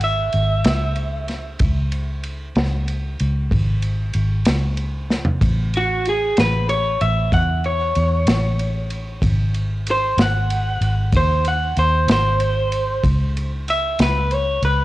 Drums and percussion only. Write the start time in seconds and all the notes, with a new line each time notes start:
0.01 ride
0.33 ride
0.64 snare, ride
0.96 ride
1.28 snare, ride
1.59 kick, ride
1.92 ride
2.23 ride
2.55 snare, ride
2.88 ride
3.19 ride
3.51 kick, ride
3.82 ride
4.14 ride
4.45 snare, ride
4.77 ride
5.11 snare
5.25 floor tom
5.42 kick, ride
5.74 ride
6.05 ride
6.37 snare, ride
6.69 ride
7.01 ride
7.32 kick, ride
7.64 ride
7.95 ride
8.27 snare, ride
8.59 ride
8.90 ride
9.22 kick, ride
9.54 ride
9.86 ride
10.18 snare, ride
10.50 ride
10.81 ride
11.12 kick, ride
11.45 ride
11.77 ride
12.08 snare, ride
12.40 ride
12.72 ride
13.04 kick, ride
13.37 ride
13.68 ride
13.99 snare, ride
14.31 ride
14.62 ride